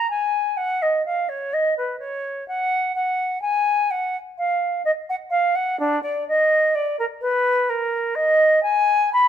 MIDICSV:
0, 0, Header, 1, 2, 480
1, 0, Start_track
1, 0, Key_signature, 6, "major"
1, 0, Tempo, 947867
1, 55, Time_signature, 3, 2, 24, 8
1, 4700, End_track
2, 0, Start_track
2, 0, Title_t, "Flute"
2, 0, Program_c, 0, 73
2, 52, Note_on_c, 0, 80, 84
2, 288, Note_on_c, 0, 78, 80
2, 296, Note_off_c, 0, 80, 0
2, 416, Note_on_c, 0, 75, 67
2, 423, Note_off_c, 0, 78, 0
2, 531, Note_off_c, 0, 75, 0
2, 534, Note_on_c, 0, 77, 73
2, 652, Note_on_c, 0, 73, 66
2, 660, Note_off_c, 0, 77, 0
2, 777, Note_on_c, 0, 75, 69
2, 784, Note_off_c, 0, 73, 0
2, 895, Note_off_c, 0, 75, 0
2, 898, Note_on_c, 0, 71, 69
2, 1005, Note_off_c, 0, 71, 0
2, 1008, Note_on_c, 0, 73, 77
2, 1249, Note_off_c, 0, 73, 0
2, 1256, Note_on_c, 0, 78, 85
2, 1493, Note_off_c, 0, 78, 0
2, 1496, Note_on_c, 0, 78, 78
2, 1727, Note_off_c, 0, 78, 0
2, 1730, Note_on_c, 0, 80, 81
2, 1979, Note_on_c, 0, 78, 79
2, 1986, Note_off_c, 0, 80, 0
2, 2110, Note_off_c, 0, 78, 0
2, 2218, Note_on_c, 0, 77, 82
2, 2452, Note_off_c, 0, 77, 0
2, 2455, Note_on_c, 0, 75, 76
2, 2486, Note_off_c, 0, 75, 0
2, 2579, Note_on_c, 0, 78, 79
2, 2610, Note_off_c, 0, 78, 0
2, 2684, Note_on_c, 0, 77, 84
2, 2811, Note_on_c, 0, 78, 89
2, 2819, Note_off_c, 0, 77, 0
2, 2931, Note_off_c, 0, 78, 0
2, 2934, Note_on_c, 0, 62, 90
2, 3049, Note_off_c, 0, 62, 0
2, 3052, Note_on_c, 0, 74, 74
2, 3174, Note_off_c, 0, 74, 0
2, 3181, Note_on_c, 0, 75, 85
2, 3417, Note_on_c, 0, 74, 79
2, 3425, Note_off_c, 0, 75, 0
2, 3537, Note_off_c, 0, 74, 0
2, 3540, Note_on_c, 0, 70, 79
2, 3570, Note_off_c, 0, 70, 0
2, 3651, Note_on_c, 0, 71, 82
2, 3896, Note_on_c, 0, 70, 74
2, 3904, Note_off_c, 0, 71, 0
2, 4128, Note_on_c, 0, 75, 94
2, 4135, Note_off_c, 0, 70, 0
2, 4366, Note_off_c, 0, 75, 0
2, 4369, Note_on_c, 0, 80, 93
2, 4606, Note_off_c, 0, 80, 0
2, 4623, Note_on_c, 0, 83, 95
2, 4700, Note_off_c, 0, 83, 0
2, 4700, End_track
0, 0, End_of_file